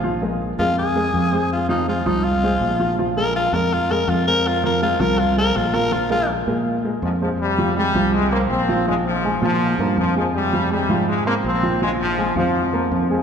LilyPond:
<<
  \new Staff \with { instrumentName = "Upright piano" } { \time 4/4 \key bes \dorian \tempo 4 = 163 <f f' f''>8 <aes aes' bes'>4 <aes aes' bes'>4 <aes aes' bes'>4 <aes aes' c''>8~ | <aes aes' c''>8 <f f' f''>8 <aes aes' c''>8 <f f' f''>4 <aes aes' c''>4 <f f' f''>8 | <f f' f''>8 <aes aes' bes'>4 <aes aes' bes'>4 <aes aes' bes'>4 <aes aes' c''>8~ | <aes aes' c''>8 <f f' f''>8 <aes aes' c''>8 <f f' f''>4 <aes aes' c''>4 <f f' f''>8 |
<f f' f''>8 <aes aes' bes'>4 <aes aes' bes'>4 <aes aes' bes'>4 <aes aes' c''>8 | r8 <f f' f''>8 <aes aes' aes''>8 <f f' f''>4 <c' c'' c'''>4 <f f' f''>8 | <f f' f''>4 <aes aes' aes''>8 <f f' f''>4 <bes bes' bes''>4 <aes aes' aes''>8~ | <aes aes' aes''>8 <f f' f''>8 <aes aes' aes''>8 <f f' f''>4 <c' c'' c'''>4 <f f' f''>8 |
<f f' f''>4 <aes aes' aes''>8 <f f' f''>4 <bes bes' bes''>4 <aes aes' aes''>8 | }
  \new Staff \with { instrumentName = "Tenor saxophone" } { \time 4/4 \key bes \dorian r4. f'8 aes'2 | f'8 ees'8 f'8 ees'8 f'2 | r8 bes'8 f'8 bes'8 f'8 bes'8 f'8 bes'8 | f'8 bes'8 f'8 bes'8 f'8 bes'8 f'8 bes'8 |
f'8 f'8 r2. | r1 | r1 | r1 |
r1 | }
  \new Staff \with { instrumentName = "Trombone section" } { \clef bass \time 4/4 \key bes \dorian r1 | r1 | r1 | r1 |
r2. <aes, f>8 <aes, f>8 | <c g>4 <c g>4 <c aes>8 <des bes>8 <f c'>4 | <des aes>8 <aes, f>4 <aes, f>4. <aes, f>8 <aes, f>8 | <c g>4 <c g>4 <c aes>8 <des bes>8 <f c'>4 |
<des aes>8 <aes, f>4 <aes, f>4. <aes, f>8 <aes, f>8 | }
  \new Staff \with { instrumentName = "Fingered electric bass" } { \clef bass \time 4/4 \key bes \dorian bes,,4. f,4. f,4~ | f,4. c,4. bes,,4~ | bes,,4. f,4. f,4~ | f,4. c,4. bes,,4~ |
bes,,4. bes,4. f,4~ | f,4. c,4. bes,,4~ | bes,,4. bes,4 g,8 f,4~ | f,4. aes,4. bes,,4~ |
bes,,4. f,4. f,4 | }
>>